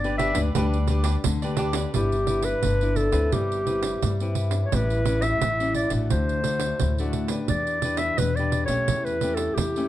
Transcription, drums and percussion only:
0.04 pandeiro soft
0.19 pandeiro medium
0.35 pandeiro medium
0.55 pandeiro medium
0.74 pandeiro soft
0.88 pandeiro medium
1.04 pandeiro medium
1.24 pandeiro medium
1.42 pandeiro soft
1.57 pandeiro medium
1.73 pandeiro medium
1.94 pandeiro medium
2.12 pandeiro soft
2.27 pandeiro medium
2.42 pandeiro medium
2.63 pandeiro medium
2.81 pandeiro soft
2.96 pandeiro soft
3.12 pandeiro medium
3.32 pandeiro medium
3.52 pandeiro soft
3.67 pandeiro soft
3.83 pandeiro medium
4.02 pandeiro medium
4.20 pandeiro soft
4.35 pandeiro medium
4.51 pandeiro medium
4.72 pandeiro medium
4.90 pandeiro soft
5.05 pandeiro medium
5.22 pandeiro medium
5.41 pandeiro medium
5.60 pandeiro soft
5.75 pandeiro soft
5.90 pandeiro medium
6.10 pandeiro medium
6.29 pandeiro soft
6.44 pandeiro medium
6.60 pandeiro medium
6.79 pandeiro medium
6.98 pandeiro soft
7.13 pandeiro soft
7.28 pandeiro medium
7.48 pandeiro medium
7.67 pandeiro soft
7.82 pandeiro medium
7.97 pandeiro medium
8.18 pandeiro medium
8.37 pandeiro soft
8.52 pandeiro medium
8.68 pandeiro medium
8.88 pandeiro medium
9.06 pandeiro soft
9.21 pandeiro medium
9.37 pandeiro medium
9.58 pandeiro medium
9.76 pandeiro soft

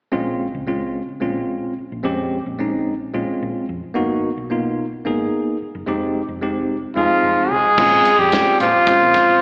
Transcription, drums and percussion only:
7.78 kick medium
7.78 crash medium
8.05 closed hi-hat medium
8.32 snare loud
8.32 closed hi-hat medium
8.60 closed hi-hat medium
8.87 kick medium
8.87 closed hi-hat medium
9.14 kick medium
9.14 snare soft
9.14 closed hi-hat soft

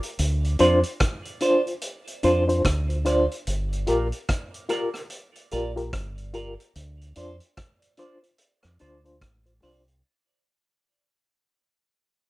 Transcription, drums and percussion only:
0.03 closed hi-hat medium
0.19 closed hi-hat loud
0.45 closed hi-hat soft
0.59 closed hi-hat medium
0.83 closed hi-hat medium
1.00 kick loud
1.00 cross-stick loud
1.00 closed hi-hat medium
1.25 closed hi-hat medium
1.40 closed hi-hat medium
1.67 closed hi-hat soft
1.81 closed hi-hat medium
2.07 closed hi-hat soft
2.23 closed hi-hat medium
2.49 closed hi-hat medium
2.65 kick loud
2.65 cross-stick loud
2.65 closed hi-hat medium
2.90 closed hi-hat soft
3.05 cross-stick medium
3.05 closed hi-hat medium
3.31 closed hi-hat medium
3.47 closed hi-hat loud
3.73 closed hi-hat soft
3.87 closed hi-hat medium
4.12 closed hi-hat medium
4.29 kick loud
4.29 cross-stick loud
4.29 closed hi-hat medium
4.54 closed hi-hat medium
4.69 cross-stick medium
4.69 closed hi-hat medium
4.94 cross-stick medium
4.94 closed hi-hat medium
5.10 closed hi-hat medium
5.36 closed hi-hat soft
5.51 closed hi-hat medium
5.77 closed hi-hat soft
5.93 kick loud
5.93 cross-stick loud
5.93 closed hi-hat loud
6.18 closed hi-hat soft
6.34 closed hi-hat medium
6.60 closed hi-hat medium
6.75 closed hi-hat medium
7.01 closed hi-hat soft
7.16 closed hi-hat medium
7.40 closed hi-hat medium
7.57 kick loud
7.57 cross-stick loud
7.57 closed hi-hat medium
7.82 closed hi-hat medium
7.97 closed hi-hat medium
8.23 closed hi-hat soft
8.38 closed hi-hat medium
8.63 cross-stick medium
8.63 closed hi-hat soft
8.79 closed hi-hat medium
9.05 closed hi-hat soft
9.21 kick loud
9.21 cross-stick loud
9.21 closed hi-hat medium
9.46 closed hi-hat soft
9.62 cross-stick soft
9.62 open hi-hat medium
9.88 closed hi-hat medium

